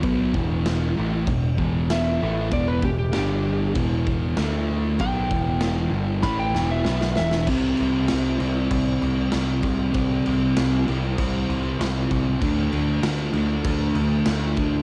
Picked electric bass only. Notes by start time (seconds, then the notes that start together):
0.03 B1
0.33 E1
0.99 A1
1.27 E1
1.58 E1
2.23 A1
2.51 E1
2.83 E1
3.16 G1
3.76 E1
4.38 D2
5.00 B1
5.31 E1
5.90 G1
6.23 A1
6.54 E1
6.85 B1
7.18 E1
7.47 C2
7.80 C2
8.12 C2
8.40 C2
8.70 C2
9.01 C2
9.33 C2
9.63 C2
9.94 C2
10.27 C2
10.58 C2
10.88 C2
11.18 C2
11.49 C2
11.79 C2
12.11 C2
12.41 D2
12.73 D2
13.02 D2
13.33 D2
13.65 D2
13.94 D2
14.27 D2
14.57 D2